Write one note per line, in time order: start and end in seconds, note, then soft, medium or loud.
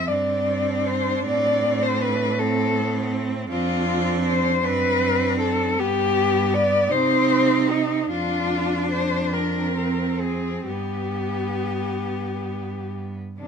0.08 1.27 G2 medium
0.08 1.23 C4 medium
0.08 2.40 D4 medium
0.08 0.88 D5 medium
0.87 1.25 C5 loud
1.25 3.49 A2 medium
1.25 2.37 C4 medium
1.25 1.84 D5 loud
1.83 2.03 C5 loud
2.02 2.41 B4 loud
2.39 2.77 C4 medium
2.39 3.48 C4 medium
2.39 3.13 A4 loud
2.76 3.14 B3 medium
3.13 3.49 C4 medium
3.50 4.65 F2 loud
3.50 4.62 C4 medium
3.50 4.62 D4 loud
3.50 4.22 F4 loud
4.27 4.65 C5 loud
4.63 5.79 F#2 medium
4.63 5.80 C4 medium
4.63 5.75 D4 medium
4.63 5.40 B4 loud
5.40 5.80 A4 loud
5.77 6.92 G2 medium
5.77 6.91 B3 medium
5.77 6.92 B3 medium
5.77 6.55 G4 loud
6.54 6.92 D5 loud
6.89 8.09 C3 medium
6.89 8.10 C4 medium
6.89 8.11 D#4 medium
6.89 7.72 C5 loud
7.71 8.11 D#4 medium
8.09 10.63 F2 medium
8.09 9.35 D4 medium
8.09 9.73 D4 medium
8.09 8.90 F4 loud
8.92 9.35 C5 loud
9.33 10.67 C4 medium
9.33 10.22 A#4 medium
9.77 10.69 C4 medium
10.20 10.66 G#4 medium
10.67 13.14 G2 medium
10.67 13.19 B3 medium
10.67 12.70 B3 medium
10.67 12.92 G4 medium
13.39 13.47 C3 medium
13.39 13.47 D#3 medium
13.39 13.47 C4 medium
13.39 13.47 D4 medium